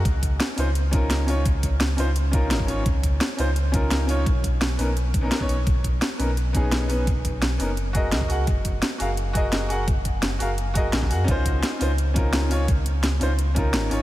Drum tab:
HH |x-x-x-o-x-x-x-o-|x-x-x-o-x-x-x-o-|x-x-x-o-x-x-x-o-|x-x-x-o-x-x-x-o-|
SD |----o-------o---|----o-------o---|----o-------o---|----o-------o---|
BD |o-o-------o-----|o-o-------o--o--|o-o-------o-----|o-o-------o--o--|

HH |x-x-x-o-x-x-x-o-|x-x-x-o-x-x-x-o-|x-x-x-o-x-x-x-o-|x-x-x-o-x-x-x-o-|
SD |----o-------o---|----o-------o---|----o-------o---|----o-------oo--|
BD |o-o-------o-----|o-o-------o--o--|o-o-------o-----|o-o-------o--o--|

HH |x-x-x-o-x-x-x-o-|x-x-x-o-x-x-x-o-|
SD |----o-------o---|----o-------o---|
BD |o-o-------o-----|o---------o-----|